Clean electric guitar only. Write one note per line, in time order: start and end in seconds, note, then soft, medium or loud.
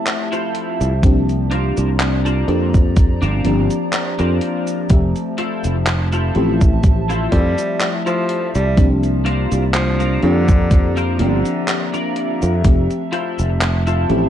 0.32 0.92 E4 medium
0.32 0.92 F4 medium
0.32 0.92 A4 medium
0.32 0.92 C5 loud
1.51 1.88 D4 loud
1.51 1.89 F4 medium
1.51 1.89 A#4 loud
1.51 1.89 C5 loud
2.25 2.74 D4 medium
2.25 2.74 F4 medium
2.25 2.74 A#4 medium
2.25 2.75 C5 medium
3.22 3.71 D4 loud
3.22 3.71 F4 medium
3.22 3.71 A#4 loud
3.22 3.71 C5 loud
4.19 4.79 D4 medium
4.19 4.79 F4 medium
4.19 4.79 A#4 medium
4.19 4.79 C5 medium
5.38 5.76 E4 loud
5.38 5.76 F4 loud
5.38 5.76 A4 medium
5.38 5.76 C5 loud
6.13 6.61 E4 medium
6.13 6.62 F4 medium
6.13 6.62 A4 medium
6.13 6.62 C5 medium
7.09 7.58 E4 loud
7.09 7.58 F4 loud
7.09 7.58 A4 medium
7.09 7.59 C5 loud
8.06 8.66 E4 medium
8.06 8.66 F4 medium
8.06 8.66 A4 medium
8.06 8.67 C5 medium
9.25 9.63 D4 loud
9.25 9.63 F4 loud
9.25 9.63 A#4 medium
9.25 9.63 C5 loud
10.00 10.48 D4 medium
10.00 10.49 F4 medium
10.00 10.49 A#4 medium
10.00 10.49 C5 loud
10.97 11.45 D4 loud
10.97 11.45 F4 medium
10.97 11.46 A#4 loud
10.97 11.46 C5 loud
11.93 12.53 D4 medium
11.93 12.53 F4 medium
11.93 12.54 A#4 medium
11.93 12.54 D5 loud
13.12 13.50 E4 loud
13.12 13.50 F4 medium
13.12 13.50 A4 loud
13.12 13.50 C5 loud
13.87 14.29 E4 medium
13.87 14.29 F4 medium
13.87 14.29 A4 medium
13.87 14.29 C5 medium